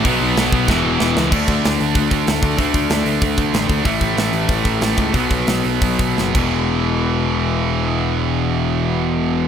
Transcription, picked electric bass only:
0.05 0.19 B1 medium
0.21 0.35 B1 medium
0.37 0.51 B1 loud
0.52 0.66 B1 medium
0.68 0.82 E1 loud
0.85 0.99 E1 loud
1.00 1.14 E1 medium
1.17 1.30 C#2 medium
1.32 1.44 D2 medium
1.48 1.60 D2 medium
1.65 1.77 D2 medium
1.81 1.92 D2 medium
1.95 2.07 D2 loud
2.11 2.23 D2 medium
2.28 2.39 D2 medium
2.43 2.54 D2 medium
2.59 2.71 D2 medium
2.74 2.86 D2 medium
2.90 3.02 D2 loud
3.05 3.17 D2 medium
3.22 3.34 D2 loud
3.38 3.50 D2 medium
3.53 3.65 A1 medium
3.69 3.81 D2 medium
3.85 3.97 A1 medium
4.01 4.13 A1 medium
4.17 4.29 A1 medium
4.32 4.45 A1 medium
4.48 4.61 A1 medium
4.65 4.77 A1 medium
4.81 4.94 A1 medium
4.98 5.10 C#2 medium
5.15 5.27 B1 medium
5.30 5.43 B1 medium
5.47 5.60 B1 medium
5.65 5.78 B1 medium
5.81 5.95 B1 medium
5.99 6.13 B1 medium
6.18 6.31 F#1 medium
6.35 9.48 E1 medium

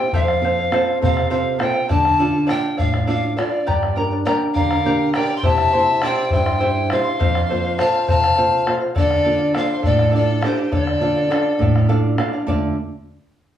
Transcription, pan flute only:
0.00 0.14 G5 loud
0.14 0.98 F5 loud
1.04 1.30 F5 loud
1.31 1.58 F5 medium
1.61 1.88 G5 medium
1.90 2.45 A5 loud
2.49 2.76 G5 loud
2.78 3.06 F5 medium
3.08 3.35 F5 medium
3.37 3.94 D5 medium
4.25 4.32 D5 medium
4.54 5.09 F5 loud
5.13 5.34 G5 medium
5.36 5.46 C6 medium
5.44 6.06 A5 loud
6.04 6.32 G5 loud
6.33 6.93 G5 loud
6.92 7.81 F5 loud
7.79 8.07 A5 loud
8.07 8.70 A5 loud
8.98 9.52 D5 loud
9.57 9.83 F5 medium
9.85 10.12 D5 medium
10.15 10.45 D5 medium
10.44 10.73 C5 medium
10.74 10.85 C#5 medium
10.85 11.86 D5 medium

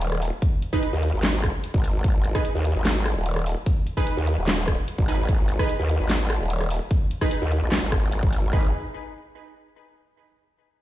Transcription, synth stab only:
0.73 0.88 D#4 medium
0.73 0.88 G#4 medium
0.73 0.88 B4 loud
2.35 2.44 D#4 medium
2.35 2.44 G#4 medium
2.35 2.44 B4 loud
3.97 4.12 D#4 medium
3.97 4.12 G#4 medium
3.97 4.12 B4 loud
5.08 5.18 D#4 medium
5.08 5.18 G#4 medium
5.08 5.18 B4 medium
5.59 5.68 D#4 medium
5.59 5.68 G#4 medium
5.59 5.68 B4 loud
7.21 7.36 D#4 medium
7.21 7.36 G#4 medium
7.21 7.36 B4 loud
8.53 8.68 D#4 medium
8.53 8.68 G#4 medium
8.53 8.68 B4 loud

